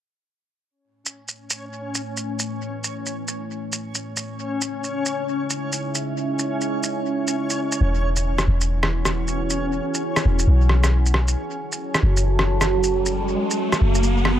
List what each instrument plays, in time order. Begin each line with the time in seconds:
0.69 ambient pad A3, synth texture C#4 C#5
0.87 ambient pad E4
0.99 ambient pad C#5
1.06 shaker
1.10 ambient pad B4
1.28 shaker
1.50 shaker
1.95 shaker
2.17 shaker
2.39 shaker
2.84 shaker
3.06 shaker
3.28 shaker
3.72 shaker
3.95 shaker
4.17 shaker
4.26 ambient pad C#4
4.45 ambient pad G#4
4.61 shaker
4.79 ambient pad D#5
4.84 shaker
5.05 ambient pad E5, shaker
5.50 shaker
5.72 shaker
5.95 shaker
6.39 shaker
6.61 shaker
6.83 shaker
7.27 shaker
7.50 shaker
7.72 shaker
7.81 808-style bass E1, ambient pad E4
7.89 ambient pad B4
7.95 ambient pad F#5
8.16 shaker
8.31 ambient pad G#5
8.38 cross-stick, shaker
8.47 808-style bass E1
8.61 shaker
8.83 cross-stick
9.05 cross-stick, shaker
9.28 shaker
9.50 shaker
9.94 shaker
10.16 cross-stick, shaker
10.25 808-style bass E1
10.39 shaker
10.47 808-style bass B1
10.69 cross-stick
10.84 cross-stick, shaker
11.06 shaker
11.14 cross-stick
11.28 shaker
11.36 ambient pad F#4, riser
11.54 ambient pad C#5 A5
11.72 shaker
11.94 cross-stick, shaker
12.03 808-style bass F#1
12.17 shaker
12.39 cross-stick
12.61 cross-stick, shaker
12.83 shaker
13.06 shaker
13.50 shaker
13.72 cross-stick, shaker
13.81 808-style bass F#1
13.95 shaker
14.03 shaker
14.25 cross-stick